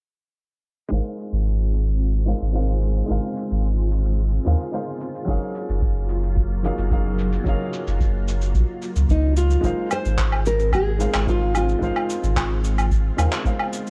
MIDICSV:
0, 0, Header, 1, 6, 480
1, 0, Start_track
1, 0, Tempo, 545455
1, 804, Time_signature, 4, 2, 24, 8
1, 12232, End_track
2, 0, Start_track
2, 0, Title_t, "Grand piano"
2, 0, Program_c, 0, 0
2, 778, Note_on_c, 0, 56, 84
2, 792, Note_on_c, 0, 63, 76
2, 804, Note_on_c, 0, 70, 77
2, 813, Note_on_c, 0, 72, 69
2, 826, Note_on_c, 0, 77, 87
2, 981, Control_c, 0, 64, 127
2, 1963, Note_off_c, 0, 56, 0
2, 1970, Note_off_c, 0, 63, 0
2, 1976, Note_off_c, 0, 70, 0
2, 1981, Note_off_c, 0, 72, 0
2, 1987, Note_off_c, 0, 77, 0
2, 1988, Note_on_c, 0, 56, 70
2, 1992, Note_on_c, 0, 63, 63
2, 1998, Note_on_c, 0, 70, 61
2, 2005, Note_on_c, 0, 72, 62
2, 2010, Note_on_c, 0, 77, 80
2, 2208, Note_off_c, 0, 56, 0
2, 2210, Note_off_c, 0, 63, 0
2, 2213, Note_off_c, 0, 70, 0
2, 2216, Note_off_c, 0, 72, 0
2, 2219, Note_off_c, 0, 77, 0
2, 2229, Note_on_c, 0, 56, 71
2, 2237, Note_on_c, 0, 63, 70
2, 2243, Note_on_c, 0, 70, 66
2, 2249, Note_on_c, 0, 72, 66
2, 2253, Note_on_c, 0, 77, 81
2, 2682, Note_off_c, 0, 56, 0
2, 2692, Note_off_c, 0, 63, 0
2, 2695, Note_on_c, 0, 56, 83
2, 2696, Note_off_c, 0, 70, 0
2, 2699, Note_off_c, 0, 72, 0
2, 2701, Note_off_c, 0, 77, 0
2, 2707, Note_on_c, 0, 63, 77
2, 2720, Note_on_c, 0, 70, 76
2, 2733, Note_on_c, 0, 72, 73
2, 2741, Note_on_c, 0, 77, 95
2, 3882, Note_off_c, 0, 56, 0
2, 3888, Note_off_c, 0, 63, 0
2, 3894, Note_off_c, 0, 70, 0
2, 3901, Note_off_c, 0, 72, 0
2, 3905, Note_off_c, 0, 77, 0
2, 3912, Note_on_c, 0, 56, 73
2, 3917, Note_on_c, 0, 63, 64
2, 3923, Note_on_c, 0, 70, 66
2, 3928, Note_on_c, 0, 72, 65
2, 3936, Note_on_c, 0, 77, 80
2, 4130, Note_off_c, 0, 56, 0
2, 4132, Note_off_c, 0, 63, 0
2, 4136, Note_off_c, 0, 70, 0
2, 4138, Note_off_c, 0, 72, 0
2, 4142, Note_off_c, 0, 77, 0
2, 4150, Note_on_c, 0, 56, 71
2, 4158, Note_on_c, 0, 63, 70
2, 4162, Note_on_c, 0, 70, 67
2, 4168, Note_on_c, 0, 72, 70
2, 4176, Note_on_c, 0, 77, 82
2, 4609, Note_off_c, 0, 56, 0
2, 4613, Note_off_c, 0, 63, 0
2, 4615, Note_off_c, 0, 70, 0
2, 4616, Note_on_c, 0, 54, 86
2, 4618, Note_off_c, 0, 72, 0
2, 4622, Note_off_c, 0, 77, 0
2, 4626, Note_on_c, 0, 61, 81
2, 4634, Note_on_c, 0, 63, 74
2, 4642, Note_on_c, 0, 68, 80
2, 4654, Note_on_c, 0, 70, 84
2, 4656, Control_c, 0, 64, 0
2, 4665, Note_on_c, 0, 77, 98
2, 4787, Control_c, 0, 64, 127
2, 5802, Note_off_c, 0, 54, 0
2, 5807, Note_off_c, 0, 61, 0
2, 5811, Note_off_c, 0, 63, 0
2, 5815, Note_off_c, 0, 68, 0
2, 5821, Note_off_c, 0, 70, 0
2, 5827, Note_off_c, 0, 77, 0
2, 5832, Note_on_c, 0, 54, 70
2, 5838, Note_on_c, 0, 61, 66
2, 5842, Note_on_c, 0, 63, 67
2, 5848, Note_on_c, 0, 68, 68
2, 5852, Note_on_c, 0, 70, 62
2, 5857, Note_on_c, 0, 77, 80
2, 6050, Note_off_c, 0, 54, 0
2, 6053, Note_off_c, 0, 61, 0
2, 6055, Note_off_c, 0, 63, 0
2, 6058, Note_off_c, 0, 68, 0
2, 6060, Note_off_c, 0, 70, 0
2, 6062, Note_off_c, 0, 77, 0
2, 6074, Note_on_c, 0, 54, 78
2, 6080, Note_on_c, 0, 61, 71
2, 6084, Note_on_c, 0, 63, 71
2, 6089, Note_on_c, 0, 68, 70
2, 6093, Note_on_c, 0, 70, 69
2, 6099, Note_on_c, 0, 77, 85
2, 6531, Note_off_c, 0, 54, 0
2, 6534, Note_off_c, 0, 61, 0
2, 6536, Note_off_c, 0, 63, 0
2, 6538, Note_off_c, 0, 68, 0
2, 6541, Note_off_c, 0, 70, 0
2, 6544, Note_off_c, 0, 77, 0
2, 6545, Note_on_c, 0, 54, 85
2, 6552, Note_on_c, 0, 61, 82
2, 6560, Note_on_c, 0, 63, 83
2, 6573, Note_on_c, 0, 68, 80
2, 6578, Note_on_c, 0, 70, 81
2, 6591, Note_on_c, 0, 77, 93
2, 7727, Note_off_c, 0, 54, 0
2, 7730, Note_off_c, 0, 61, 0
2, 7734, Note_off_c, 0, 63, 0
2, 7741, Note_off_c, 0, 68, 0
2, 7743, Note_off_c, 0, 70, 0
2, 7750, Note_off_c, 0, 77, 0
2, 8457, Note_on_c, 0, 56, 86
2, 8470, Note_on_c, 0, 63, 85
2, 8482, Note_on_c, 0, 70, 83
2, 8491, Note_on_c, 0, 72, 81
2, 8494, Control_c, 0, 64, 0
2, 8504, Note_on_c, 0, 77, 92
2, 8649, Control_c, 0, 64, 127
2, 9642, Note_off_c, 0, 56, 0
2, 9649, Note_off_c, 0, 63, 0
2, 9655, Note_off_c, 0, 70, 0
2, 9660, Note_off_c, 0, 72, 0
2, 9666, Note_off_c, 0, 77, 0
2, 9667, Note_on_c, 0, 56, 75
2, 9671, Note_on_c, 0, 63, 71
2, 9678, Note_on_c, 0, 70, 70
2, 9684, Note_on_c, 0, 72, 68
2, 9689, Note_on_c, 0, 77, 84
2, 9888, Note_off_c, 0, 56, 0
2, 9890, Note_off_c, 0, 63, 0
2, 9893, Note_off_c, 0, 70, 0
2, 9896, Note_off_c, 0, 72, 0
2, 9898, Note_off_c, 0, 77, 0
2, 9906, Note_on_c, 0, 56, 72
2, 9911, Note_on_c, 0, 63, 74
2, 9918, Note_on_c, 0, 70, 72
2, 9925, Note_on_c, 0, 72, 66
2, 9931, Note_on_c, 0, 77, 91
2, 10361, Note_off_c, 0, 56, 0
2, 10370, Note_off_c, 0, 63, 0
2, 10373, Note_off_c, 0, 70, 0
2, 10374, Note_on_c, 0, 56, 91
2, 10376, Note_off_c, 0, 72, 0
2, 10379, Note_off_c, 0, 77, 0
2, 10385, Note_on_c, 0, 63, 83
2, 10397, Note_on_c, 0, 70, 82
2, 10409, Note_on_c, 0, 72, 82
2, 10420, Note_on_c, 0, 77, 92
2, 11561, Note_off_c, 0, 56, 0
2, 11567, Note_off_c, 0, 63, 0
2, 11572, Note_off_c, 0, 70, 0
2, 11579, Note_off_c, 0, 72, 0
2, 11584, Note_off_c, 0, 77, 0
2, 11589, Note_on_c, 0, 56, 75
2, 11594, Note_on_c, 0, 63, 69
2, 11601, Note_on_c, 0, 70, 68
2, 11604, Note_on_c, 0, 72, 67
2, 11612, Note_on_c, 0, 77, 78
2, 11809, Note_off_c, 0, 56, 0
2, 11811, Note_off_c, 0, 63, 0
2, 11815, Note_off_c, 0, 70, 0
2, 11816, Note_off_c, 0, 72, 0
2, 11820, Note_off_c, 0, 77, 0
2, 11832, Note_on_c, 0, 56, 75
2, 11836, Note_on_c, 0, 63, 72
2, 11843, Note_on_c, 0, 70, 72
2, 11847, Note_on_c, 0, 72, 67
2, 11855, Note_on_c, 0, 77, 84
2, 12232, Note_off_c, 0, 56, 0
2, 12232, Note_off_c, 0, 63, 0
2, 12232, Note_off_c, 0, 70, 0
2, 12232, Note_off_c, 0, 72, 0
2, 12232, Note_off_c, 0, 77, 0
2, 12232, End_track
3, 0, Start_track
3, 0, Title_t, "Nylon-string guitar"
3, 0, Program_c, 1, 24
3, 8015, Note_on_c, 1, 63, 83
3, 8233, Note_off_c, 1, 63, 0
3, 8250, Note_on_c, 1, 65, 90
3, 8694, Note_off_c, 1, 65, 0
3, 8734, Note_on_c, 1, 72, 97
3, 9210, Note_off_c, 1, 72, 0
3, 9213, Note_on_c, 1, 70, 84
3, 9453, Note_off_c, 1, 70, 0
3, 9457, Note_on_c, 1, 68, 95
3, 9938, Note_on_c, 1, 65, 87
3, 9945, Note_off_c, 1, 68, 0
3, 10155, Note_off_c, 1, 65, 0
3, 10182, Note_on_c, 1, 65, 73
3, 11098, Note_off_c, 1, 65, 0
3, 12232, End_track
4, 0, Start_track
4, 0, Title_t, "String machine"
4, 0, Program_c, 2, 50
4, 815, Note_on_c, 2, 60, 61
4, 817, Note_on_c, 2, 56, 65
4, 818, Note_on_c, 2, 65, 73
4, 4615, Note_off_c, 2, 60, 0
4, 4616, Note_off_c, 2, 56, 0
4, 4640, Note_on_c, 2, 54, 72
4, 4643, Note_on_c, 2, 58, 59
4, 8447, Note_off_c, 2, 54, 0
4, 8448, Note_off_c, 2, 58, 0
4, 8456, Note_off_c, 2, 65, 0
4, 8482, Note_on_c, 2, 60, 63
4, 8485, Note_on_c, 2, 56, 72
4, 8485, Note_on_c, 2, 65, 81
4, 12232, Note_off_c, 2, 56, 0
4, 12232, Note_off_c, 2, 60, 0
4, 12232, Note_off_c, 2, 65, 0
4, 12232, End_track
5, 0, Start_track
5, 0, Title_t, "Sub bass"
5, 0, Program_c, 3, 38
5, 803, Note_on_c, 3, 32, 87
5, 884, Note_off_c, 3, 32, 0
5, 1166, Note_on_c, 3, 32, 92
5, 2058, Note_off_c, 3, 32, 0
5, 2128, Note_on_c, 3, 32, 75
5, 2660, Note_off_c, 3, 32, 0
5, 2729, Note_on_c, 3, 32, 91
5, 2807, Note_off_c, 3, 32, 0
5, 3092, Note_on_c, 3, 32, 85
5, 3862, Note_off_c, 3, 32, 0
5, 3926, Note_on_c, 3, 39, 87
5, 4005, Note_off_c, 3, 39, 0
5, 4646, Note_on_c, 3, 30, 90
5, 4725, Note_off_c, 3, 30, 0
5, 5010, Note_on_c, 3, 30, 91
5, 5900, Note_off_c, 3, 30, 0
5, 5967, Note_on_c, 3, 30, 76
5, 6499, Note_off_c, 3, 30, 0
5, 6563, Note_on_c, 3, 30, 88
5, 6644, Note_off_c, 3, 30, 0
5, 6928, Note_on_c, 3, 30, 89
5, 7516, Note_off_c, 3, 30, 0
5, 7521, Note_on_c, 3, 34, 100
5, 7603, Note_off_c, 3, 34, 0
5, 7885, Note_on_c, 3, 37, 74
5, 7963, Note_off_c, 3, 37, 0
5, 8002, Note_on_c, 3, 37, 87
5, 8418, Note_off_c, 3, 37, 0
5, 8480, Note_on_c, 3, 32, 92
5, 8562, Note_off_c, 3, 32, 0
5, 8848, Note_on_c, 3, 32, 91
5, 9740, Note_off_c, 3, 32, 0
5, 9806, Note_on_c, 3, 32, 75
5, 10339, Note_off_c, 3, 32, 0
5, 10402, Note_on_c, 3, 32, 91
5, 10483, Note_off_c, 3, 32, 0
5, 10764, Note_on_c, 3, 32, 93
5, 11538, Note_off_c, 3, 32, 0
5, 11601, Note_on_c, 3, 39, 84
5, 11683, Note_off_c, 3, 39, 0
5, 12232, End_track
6, 0, Start_track
6, 0, Title_t, "Drums"
6, 802, Note_on_c, 9, 82, 28
6, 890, Note_off_c, 9, 82, 0
6, 1043, Note_on_c, 9, 82, 65
6, 1131, Note_off_c, 9, 82, 0
6, 1164, Note_on_c, 9, 82, 36
6, 1252, Note_off_c, 9, 82, 0
6, 1283, Note_on_c, 9, 82, 28
6, 1371, Note_off_c, 9, 82, 0
6, 1521, Note_on_c, 9, 82, 68
6, 1609, Note_off_c, 9, 82, 0
6, 1646, Note_on_c, 9, 82, 38
6, 1734, Note_off_c, 9, 82, 0
6, 1759, Note_on_c, 9, 82, 29
6, 1847, Note_off_c, 9, 82, 0
6, 2000, Note_on_c, 9, 82, 65
6, 2088, Note_off_c, 9, 82, 0
6, 2123, Note_on_c, 9, 82, 41
6, 2211, Note_off_c, 9, 82, 0
6, 2240, Note_on_c, 9, 82, 28
6, 2328, Note_off_c, 9, 82, 0
6, 2478, Note_on_c, 9, 82, 65
6, 2566, Note_off_c, 9, 82, 0
6, 2603, Note_on_c, 9, 82, 38
6, 2691, Note_off_c, 9, 82, 0
6, 2722, Note_on_c, 9, 82, 29
6, 2810, Note_off_c, 9, 82, 0
6, 2963, Note_on_c, 9, 82, 74
6, 3051, Note_off_c, 9, 82, 0
6, 3086, Note_on_c, 9, 82, 39
6, 3174, Note_off_c, 9, 82, 0
6, 3204, Note_on_c, 9, 82, 31
6, 3292, Note_off_c, 9, 82, 0
6, 3443, Note_on_c, 9, 82, 69
6, 3531, Note_off_c, 9, 82, 0
6, 3568, Note_on_c, 9, 82, 39
6, 3656, Note_off_c, 9, 82, 0
6, 3683, Note_on_c, 9, 82, 30
6, 3771, Note_off_c, 9, 82, 0
6, 3923, Note_on_c, 9, 82, 73
6, 4011, Note_off_c, 9, 82, 0
6, 4046, Note_on_c, 9, 82, 39
6, 4134, Note_off_c, 9, 82, 0
6, 4163, Note_on_c, 9, 82, 29
6, 4251, Note_off_c, 9, 82, 0
6, 4403, Note_on_c, 9, 82, 72
6, 4491, Note_off_c, 9, 82, 0
6, 4527, Note_on_c, 9, 82, 39
6, 4615, Note_off_c, 9, 82, 0
6, 4644, Note_on_c, 9, 36, 83
6, 4646, Note_on_c, 9, 82, 30
6, 4732, Note_off_c, 9, 36, 0
6, 4734, Note_off_c, 9, 82, 0
6, 4882, Note_on_c, 9, 82, 78
6, 4970, Note_off_c, 9, 82, 0
6, 5006, Note_on_c, 9, 82, 45
6, 5094, Note_off_c, 9, 82, 0
6, 5123, Note_on_c, 9, 82, 31
6, 5124, Note_on_c, 9, 36, 102
6, 5211, Note_off_c, 9, 82, 0
6, 5212, Note_off_c, 9, 36, 0
6, 5360, Note_on_c, 9, 82, 72
6, 5448, Note_off_c, 9, 82, 0
6, 5484, Note_on_c, 9, 82, 39
6, 5572, Note_off_c, 9, 82, 0
6, 5601, Note_on_c, 9, 82, 31
6, 5604, Note_on_c, 9, 36, 89
6, 5689, Note_off_c, 9, 82, 0
6, 5692, Note_off_c, 9, 36, 0
6, 5844, Note_on_c, 9, 82, 71
6, 5932, Note_off_c, 9, 82, 0
6, 5964, Note_on_c, 9, 82, 41
6, 6052, Note_off_c, 9, 82, 0
6, 6082, Note_on_c, 9, 82, 30
6, 6083, Note_on_c, 9, 36, 100
6, 6170, Note_off_c, 9, 82, 0
6, 6171, Note_off_c, 9, 36, 0
6, 6323, Note_on_c, 9, 82, 72
6, 6411, Note_off_c, 9, 82, 0
6, 6445, Note_on_c, 9, 82, 38
6, 6533, Note_off_c, 9, 82, 0
6, 6562, Note_on_c, 9, 36, 87
6, 6562, Note_on_c, 9, 82, 29
6, 6650, Note_off_c, 9, 36, 0
6, 6650, Note_off_c, 9, 82, 0
6, 6802, Note_on_c, 9, 82, 72
6, 6890, Note_off_c, 9, 82, 0
6, 6926, Note_on_c, 9, 82, 43
6, 7014, Note_off_c, 9, 82, 0
6, 7042, Note_on_c, 9, 36, 104
6, 7043, Note_on_c, 9, 82, 31
6, 7130, Note_off_c, 9, 36, 0
6, 7131, Note_off_c, 9, 82, 0
6, 7284, Note_on_c, 9, 82, 72
6, 7372, Note_off_c, 9, 82, 0
6, 7403, Note_on_c, 9, 82, 42
6, 7491, Note_off_c, 9, 82, 0
6, 7521, Note_on_c, 9, 36, 94
6, 7521, Note_on_c, 9, 82, 32
6, 7609, Note_off_c, 9, 36, 0
6, 7609, Note_off_c, 9, 82, 0
6, 7760, Note_on_c, 9, 82, 72
6, 7848, Note_off_c, 9, 82, 0
6, 7884, Note_on_c, 9, 82, 44
6, 7972, Note_off_c, 9, 82, 0
6, 8001, Note_on_c, 9, 36, 99
6, 8002, Note_on_c, 9, 82, 32
6, 8089, Note_off_c, 9, 36, 0
6, 8090, Note_off_c, 9, 82, 0
6, 8242, Note_on_c, 9, 82, 70
6, 8330, Note_off_c, 9, 82, 0
6, 8363, Note_on_c, 9, 82, 41
6, 8451, Note_off_c, 9, 82, 0
6, 8479, Note_on_c, 9, 36, 91
6, 8480, Note_on_c, 9, 82, 30
6, 8567, Note_off_c, 9, 36, 0
6, 8568, Note_off_c, 9, 82, 0
6, 8720, Note_on_c, 9, 77, 69
6, 8720, Note_on_c, 9, 82, 73
6, 8808, Note_off_c, 9, 77, 0
6, 8808, Note_off_c, 9, 82, 0
6, 8845, Note_on_c, 9, 82, 41
6, 8933, Note_off_c, 9, 82, 0
6, 8960, Note_on_c, 9, 36, 104
6, 8962, Note_on_c, 9, 39, 74
6, 8962, Note_on_c, 9, 82, 30
6, 9048, Note_off_c, 9, 36, 0
6, 9050, Note_off_c, 9, 39, 0
6, 9050, Note_off_c, 9, 82, 0
6, 9084, Note_on_c, 9, 77, 68
6, 9172, Note_off_c, 9, 77, 0
6, 9201, Note_on_c, 9, 82, 68
6, 9289, Note_off_c, 9, 82, 0
6, 9324, Note_on_c, 9, 82, 39
6, 9412, Note_off_c, 9, 82, 0
6, 9439, Note_on_c, 9, 36, 89
6, 9440, Note_on_c, 9, 77, 68
6, 9441, Note_on_c, 9, 82, 29
6, 9527, Note_off_c, 9, 36, 0
6, 9528, Note_off_c, 9, 77, 0
6, 9529, Note_off_c, 9, 82, 0
6, 9680, Note_on_c, 9, 82, 71
6, 9768, Note_off_c, 9, 82, 0
6, 9803, Note_on_c, 9, 39, 73
6, 9803, Note_on_c, 9, 77, 72
6, 9804, Note_on_c, 9, 82, 39
6, 9891, Note_off_c, 9, 39, 0
6, 9891, Note_off_c, 9, 77, 0
6, 9892, Note_off_c, 9, 82, 0
6, 9919, Note_on_c, 9, 36, 99
6, 9924, Note_on_c, 9, 82, 30
6, 10007, Note_off_c, 9, 36, 0
6, 10012, Note_off_c, 9, 82, 0
6, 10161, Note_on_c, 9, 77, 72
6, 10162, Note_on_c, 9, 82, 68
6, 10249, Note_off_c, 9, 77, 0
6, 10250, Note_off_c, 9, 82, 0
6, 10284, Note_on_c, 9, 82, 41
6, 10372, Note_off_c, 9, 82, 0
6, 10400, Note_on_c, 9, 36, 92
6, 10403, Note_on_c, 9, 82, 32
6, 10488, Note_off_c, 9, 36, 0
6, 10491, Note_off_c, 9, 82, 0
6, 10525, Note_on_c, 9, 77, 68
6, 10613, Note_off_c, 9, 77, 0
6, 10643, Note_on_c, 9, 82, 74
6, 10731, Note_off_c, 9, 82, 0
6, 10767, Note_on_c, 9, 82, 45
6, 10855, Note_off_c, 9, 82, 0
6, 10881, Note_on_c, 9, 36, 111
6, 10885, Note_on_c, 9, 39, 72
6, 10885, Note_on_c, 9, 77, 67
6, 10886, Note_on_c, 9, 82, 31
6, 10969, Note_off_c, 9, 36, 0
6, 10973, Note_off_c, 9, 39, 0
6, 10973, Note_off_c, 9, 77, 0
6, 10974, Note_off_c, 9, 82, 0
6, 11124, Note_on_c, 9, 82, 74
6, 11212, Note_off_c, 9, 82, 0
6, 11249, Note_on_c, 9, 77, 67
6, 11249, Note_on_c, 9, 82, 42
6, 11337, Note_off_c, 9, 77, 0
6, 11337, Note_off_c, 9, 82, 0
6, 11362, Note_on_c, 9, 36, 90
6, 11364, Note_on_c, 9, 82, 32
6, 11450, Note_off_c, 9, 36, 0
6, 11452, Note_off_c, 9, 82, 0
6, 11603, Note_on_c, 9, 77, 70
6, 11604, Note_on_c, 9, 82, 76
6, 11691, Note_off_c, 9, 77, 0
6, 11692, Note_off_c, 9, 82, 0
6, 11726, Note_on_c, 9, 39, 77
6, 11727, Note_on_c, 9, 82, 40
6, 11814, Note_off_c, 9, 39, 0
6, 11815, Note_off_c, 9, 82, 0
6, 11841, Note_on_c, 9, 36, 102
6, 11844, Note_on_c, 9, 82, 32
6, 11929, Note_off_c, 9, 36, 0
6, 11932, Note_off_c, 9, 82, 0
6, 11966, Note_on_c, 9, 77, 74
6, 12054, Note_off_c, 9, 77, 0
6, 12084, Note_on_c, 9, 82, 72
6, 12172, Note_off_c, 9, 82, 0
6, 12232, End_track
0, 0, End_of_file